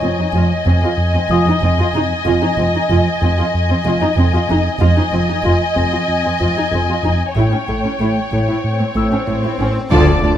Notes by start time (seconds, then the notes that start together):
Already playing: C#5 D#5 G#5 C#6
0.02 F1 F2 F3 C4
0.18 F2 D#4
0.34 F1 F2 F3 F4
0.66 F1 F2 C4
0.82 F2 F4
0.97 F2
1.14 F2 C4
1.29 F1 F2 F3 F4 D#6
1.46 F2 D#4
1.61 F1 F2 C4
1.78 F2 F4
1.94 F1 F2 D#4
2.24 F1 F2 F4
2.42 F2 D#4
2.57 F1 F2 F3 C4
2.74 F2 D#4
2.89 F1 F2 F3 F4
3.21 F1 F2 C4
3.39 F2 F4
3.54 F2
3.69 F2 C4
3.85 F1 F2 F3 F4
4.01 F2 D#4
4.17 F1 F2 C4
4.33 F2 F4
4.48 F1 F2 D#4
4.80 F1 F2 F4 D#5 G#5
4.96 F2 D#4
5.12 F1 F2 F3 C4
5.28 F2 D#4
5.44 F1 F2 F3 F4
5.76 F1 F2 C4
5.92 F2 F4
6.08 F2
6.25 F2 C4
6.40 F1 F2 F3 F4
6.56 F2 D#4
6.71 F1 F2 C4
6.88 F2 F4
7.03 F1 F2 D#4
7.36 A1 A2 E4 C#5 G5, swell
7.52 A2 C#4
7.68 A1 A2 A3
7.84 A2 C#4
8.00 A1 A2 A3 E4
8.32 A1 A2 A3
8.48 A2 E4
8.64 A2
8.79 A2 A3
8.95 A1 A2 A3 E4 E6
9.12 A2 C#4
9.27 A1 A2 A3
9.43 A2 E4
9.59 A1 A2 C#4
9.90 D2 D3 F3 A3 D4 F4 D5 A5 D6, impact
10.22 D2 D4 F4 D5 A5